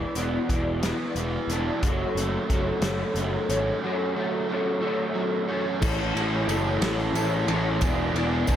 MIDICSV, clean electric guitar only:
0, 0, Header, 1, 2, 480
1, 0, Start_track
1, 0, Key_signature, 3, "major"
1, 0, Tempo, 665188
1, 1323, Time_signature, 6, 3, 24, 8
1, 6177, End_track
2, 0, Start_track
2, 0, Title_t, "Clean electric guitar"
2, 0, Program_c, 0, 27
2, 0, Note_on_c, 0, 52, 91
2, 0, Note_on_c, 0, 56, 94
2, 0, Note_on_c, 0, 59, 95
2, 0, Note_on_c, 0, 64, 79
2, 0, Note_on_c, 0, 68, 87
2, 0, Note_on_c, 0, 74, 102
2, 104, Note_off_c, 0, 74, 0
2, 109, Note_off_c, 0, 68, 0
2, 112, Note_on_c, 0, 74, 70
2, 118, Note_on_c, 0, 68, 66
2, 123, Note_off_c, 0, 64, 0
2, 128, Note_off_c, 0, 59, 0
2, 132, Note_on_c, 0, 64, 63
2, 137, Note_on_c, 0, 59, 65
2, 348, Note_off_c, 0, 59, 0
2, 354, Note_off_c, 0, 52, 0
2, 357, Note_off_c, 0, 56, 0
2, 357, Note_on_c, 0, 59, 56
2, 360, Note_off_c, 0, 64, 0
2, 367, Note_off_c, 0, 68, 0
2, 368, Note_on_c, 0, 64, 57
2, 375, Note_off_c, 0, 74, 0
2, 376, Note_on_c, 0, 68, 64
2, 383, Note_on_c, 0, 74, 66
2, 590, Note_off_c, 0, 74, 0
2, 599, Note_off_c, 0, 68, 0
2, 599, Note_on_c, 0, 74, 87
2, 601, Note_off_c, 0, 64, 0
2, 607, Note_on_c, 0, 68, 94
2, 610, Note_on_c, 0, 64, 90
2, 611, Note_off_c, 0, 59, 0
2, 619, Note_on_c, 0, 56, 78
2, 620, Note_on_c, 0, 59, 81
2, 627, Note_on_c, 0, 52, 79
2, 1075, Note_off_c, 0, 74, 0
2, 1080, Note_off_c, 0, 68, 0
2, 1084, Note_on_c, 0, 74, 81
2, 1088, Note_on_c, 0, 68, 74
2, 1091, Note_off_c, 0, 64, 0
2, 1095, Note_off_c, 0, 59, 0
2, 1100, Note_on_c, 0, 64, 65
2, 1104, Note_on_c, 0, 59, 60
2, 1307, Note_off_c, 0, 56, 0
2, 1309, Note_off_c, 0, 74, 0
2, 1310, Note_on_c, 0, 54, 93
2, 1311, Note_off_c, 0, 68, 0
2, 1313, Note_off_c, 0, 59, 0
2, 1316, Note_on_c, 0, 61, 98
2, 1317, Note_off_c, 0, 64, 0
2, 1321, Note_off_c, 0, 52, 0
2, 1323, Note_on_c, 0, 66, 100
2, 1332, Note_on_c, 0, 73, 96
2, 1333, Note_on_c, 0, 69, 94
2, 1545, Note_off_c, 0, 73, 0
2, 1548, Note_on_c, 0, 73, 70
2, 1559, Note_off_c, 0, 69, 0
2, 1562, Note_on_c, 0, 69, 61
2, 1569, Note_off_c, 0, 66, 0
2, 1572, Note_on_c, 0, 66, 54
2, 1792, Note_off_c, 0, 61, 0
2, 1795, Note_on_c, 0, 61, 66
2, 1804, Note_off_c, 0, 66, 0
2, 1807, Note_on_c, 0, 66, 75
2, 1817, Note_off_c, 0, 69, 0
2, 1820, Note_off_c, 0, 73, 0
2, 1820, Note_on_c, 0, 69, 75
2, 1823, Note_on_c, 0, 73, 73
2, 2035, Note_off_c, 0, 73, 0
2, 2038, Note_on_c, 0, 73, 99
2, 2042, Note_off_c, 0, 69, 0
2, 2045, Note_off_c, 0, 66, 0
2, 2045, Note_on_c, 0, 69, 92
2, 2053, Note_on_c, 0, 66, 85
2, 2055, Note_off_c, 0, 61, 0
2, 2058, Note_on_c, 0, 61, 79
2, 2059, Note_off_c, 0, 54, 0
2, 2062, Note_on_c, 0, 54, 80
2, 2517, Note_off_c, 0, 73, 0
2, 2520, Note_on_c, 0, 73, 74
2, 2533, Note_off_c, 0, 69, 0
2, 2536, Note_on_c, 0, 69, 73
2, 2537, Note_off_c, 0, 66, 0
2, 2546, Note_on_c, 0, 66, 61
2, 2757, Note_off_c, 0, 54, 0
2, 2765, Note_on_c, 0, 54, 98
2, 2768, Note_off_c, 0, 61, 0
2, 2768, Note_off_c, 0, 66, 0
2, 2771, Note_on_c, 0, 61, 101
2, 2774, Note_off_c, 0, 69, 0
2, 2777, Note_off_c, 0, 73, 0
2, 2777, Note_on_c, 0, 66, 94
2, 2783, Note_on_c, 0, 69, 102
2, 2786, Note_on_c, 0, 73, 104
2, 2999, Note_off_c, 0, 73, 0
2, 3007, Note_on_c, 0, 73, 72
2, 3015, Note_off_c, 0, 69, 0
2, 3024, Note_on_c, 0, 69, 74
2, 3028, Note_off_c, 0, 66, 0
2, 3036, Note_on_c, 0, 66, 58
2, 3233, Note_off_c, 0, 61, 0
2, 3242, Note_on_c, 0, 61, 72
2, 3244, Note_off_c, 0, 54, 0
2, 3246, Note_off_c, 0, 66, 0
2, 3249, Note_off_c, 0, 69, 0
2, 3255, Note_on_c, 0, 66, 65
2, 3258, Note_on_c, 0, 69, 74
2, 3262, Note_off_c, 0, 73, 0
2, 3270, Note_on_c, 0, 73, 83
2, 3458, Note_off_c, 0, 73, 0
2, 3464, Note_off_c, 0, 69, 0
2, 3467, Note_off_c, 0, 66, 0
2, 3467, Note_on_c, 0, 73, 100
2, 3473, Note_on_c, 0, 69, 96
2, 3475, Note_on_c, 0, 66, 77
2, 3478, Note_off_c, 0, 61, 0
2, 3487, Note_on_c, 0, 61, 88
2, 3493, Note_on_c, 0, 54, 77
2, 3942, Note_off_c, 0, 73, 0
2, 3951, Note_on_c, 0, 73, 73
2, 3964, Note_off_c, 0, 69, 0
2, 3968, Note_off_c, 0, 66, 0
2, 3972, Note_on_c, 0, 69, 77
2, 3977, Note_on_c, 0, 66, 63
2, 4182, Note_off_c, 0, 73, 0
2, 4190, Note_off_c, 0, 61, 0
2, 4191, Note_off_c, 0, 54, 0
2, 4193, Note_off_c, 0, 69, 0
2, 4194, Note_off_c, 0, 66, 0
2, 4194, Note_on_c, 0, 57, 94
2, 4197, Note_on_c, 0, 61, 102
2, 4197, Note_on_c, 0, 64, 93
2, 4206, Note_on_c, 0, 68, 116
2, 4211, Note_on_c, 0, 73, 108
2, 4426, Note_off_c, 0, 57, 0
2, 4434, Note_on_c, 0, 57, 91
2, 4435, Note_off_c, 0, 61, 0
2, 4442, Note_off_c, 0, 64, 0
2, 4443, Note_off_c, 0, 68, 0
2, 4443, Note_on_c, 0, 61, 81
2, 4445, Note_off_c, 0, 73, 0
2, 4445, Note_on_c, 0, 64, 86
2, 4446, Note_on_c, 0, 68, 85
2, 4454, Note_on_c, 0, 73, 93
2, 4668, Note_off_c, 0, 57, 0
2, 4676, Note_off_c, 0, 61, 0
2, 4677, Note_on_c, 0, 57, 65
2, 4679, Note_off_c, 0, 64, 0
2, 4682, Note_on_c, 0, 64, 85
2, 4683, Note_off_c, 0, 73, 0
2, 4685, Note_on_c, 0, 61, 70
2, 4686, Note_off_c, 0, 68, 0
2, 4689, Note_on_c, 0, 68, 84
2, 4692, Note_on_c, 0, 73, 85
2, 4910, Note_off_c, 0, 57, 0
2, 4916, Note_off_c, 0, 61, 0
2, 4919, Note_on_c, 0, 57, 92
2, 4920, Note_off_c, 0, 68, 0
2, 4921, Note_off_c, 0, 64, 0
2, 4924, Note_on_c, 0, 61, 88
2, 4926, Note_off_c, 0, 73, 0
2, 4929, Note_on_c, 0, 64, 101
2, 4929, Note_on_c, 0, 68, 91
2, 4935, Note_on_c, 0, 73, 97
2, 5156, Note_off_c, 0, 57, 0
2, 5160, Note_off_c, 0, 61, 0
2, 5164, Note_off_c, 0, 64, 0
2, 5165, Note_on_c, 0, 57, 82
2, 5167, Note_off_c, 0, 68, 0
2, 5169, Note_on_c, 0, 61, 94
2, 5172, Note_off_c, 0, 73, 0
2, 5172, Note_on_c, 0, 64, 96
2, 5176, Note_on_c, 0, 68, 86
2, 5181, Note_on_c, 0, 73, 108
2, 5391, Note_off_c, 0, 57, 0
2, 5394, Note_off_c, 0, 61, 0
2, 5400, Note_on_c, 0, 57, 88
2, 5403, Note_on_c, 0, 61, 91
2, 5404, Note_off_c, 0, 64, 0
2, 5411, Note_off_c, 0, 68, 0
2, 5412, Note_off_c, 0, 73, 0
2, 5413, Note_on_c, 0, 64, 87
2, 5420, Note_on_c, 0, 68, 99
2, 5421, Note_on_c, 0, 73, 104
2, 5625, Note_off_c, 0, 57, 0
2, 5627, Note_off_c, 0, 61, 0
2, 5632, Note_off_c, 0, 64, 0
2, 5635, Note_off_c, 0, 68, 0
2, 5636, Note_off_c, 0, 73, 0
2, 5648, Note_on_c, 0, 52, 100
2, 5649, Note_on_c, 0, 56, 94
2, 5650, Note_on_c, 0, 59, 100
2, 5656, Note_on_c, 0, 64, 102
2, 5660, Note_on_c, 0, 68, 121
2, 5667, Note_on_c, 0, 74, 110
2, 5870, Note_off_c, 0, 52, 0
2, 5872, Note_off_c, 0, 56, 0
2, 5876, Note_off_c, 0, 59, 0
2, 5879, Note_on_c, 0, 52, 78
2, 5881, Note_on_c, 0, 56, 85
2, 5882, Note_off_c, 0, 68, 0
2, 5883, Note_off_c, 0, 64, 0
2, 5885, Note_on_c, 0, 59, 97
2, 5890, Note_on_c, 0, 68, 94
2, 5892, Note_on_c, 0, 64, 87
2, 5893, Note_off_c, 0, 74, 0
2, 5902, Note_on_c, 0, 74, 95
2, 6106, Note_off_c, 0, 52, 0
2, 6106, Note_off_c, 0, 56, 0
2, 6114, Note_on_c, 0, 52, 72
2, 6114, Note_on_c, 0, 56, 69
2, 6115, Note_off_c, 0, 59, 0
2, 6120, Note_off_c, 0, 64, 0
2, 6122, Note_off_c, 0, 68, 0
2, 6122, Note_off_c, 0, 74, 0
2, 6124, Note_on_c, 0, 59, 79
2, 6129, Note_on_c, 0, 64, 96
2, 6130, Note_on_c, 0, 68, 90
2, 6131, Note_on_c, 0, 74, 94
2, 6177, Note_off_c, 0, 52, 0
2, 6177, Note_off_c, 0, 56, 0
2, 6177, Note_off_c, 0, 59, 0
2, 6177, Note_off_c, 0, 64, 0
2, 6177, Note_off_c, 0, 68, 0
2, 6177, Note_off_c, 0, 74, 0
2, 6177, End_track
0, 0, End_of_file